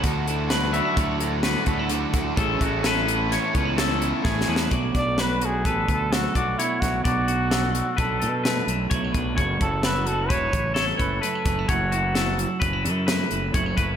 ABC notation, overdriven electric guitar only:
X:1
M:5/4
L:1/8
Q:1/4=129
K:Bdor
V:1 name="Overdriven electric guitar"
[D,A,DFA] [DFA] [A,DFA] [D,A,DFA] [A,DFA] [DFA] [D,A,DFA] [DFA] [D,A,DFA] [DFA] | [A,CEA] [CEA] [A,CEA] [A,CEA] [A,CEA] [CEA] [A,CEA] [CEA] [A,CEA] [CEA] | z8 z2 | z8 z2 |
z8 z2 | z8 z2 |]